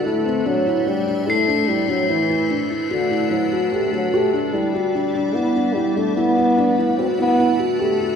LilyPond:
<<
  \new Staff \with { instrumentName = "Crotales" } { \time 5/4 \key b \phrygian \tempo 4 = 147 r2. c''''2 | r1 r4 | r1 r4 | r1 r4 | }
  \new Staff \with { instrumentName = "Ambient pad" } { \time 5/4 \key b \phrygian << { <e' c''>1~ <e' c''>4 | <d' b'>1~ <d' b'>4 | <e' d''>1~ <e' d''>4 | <d' b'>1~ <d' b'>4 | } \\ { a1~ a4~ | a1~ a4 | g1~ g4 | a1~ a4 | } >> }
  \new Staff \with { instrumentName = "Felt piano" } { \time 5/4 \key b \phrygian e'8 c'8 d'8 e'8 d'8 d'8 e'8 d'8 e'8 d'8 | e'8 e'8 d'8 e'8 fis'8 e'8 e'8 fis'8 g'8 fis'8 | g'8 d'8 e'8 fis'8 d'8 d'8 e'8 d'8 e'8 d'8 | e'8 e'8 d'8 e'8 fis'8 e'8 e'8 fis'8 g'8 fis'8 | }
  \new Staff \with { instrumentName = "French horn" } { \clef bass \time 5/4 \key b \phrygian a4 fis4 g4 a4 g8 fis8 | e4. r8 d4 fis4 a8 fis8 | a4 g2 b4 g8 a8 | b2 c'8 b4 r8 a4 | }
>>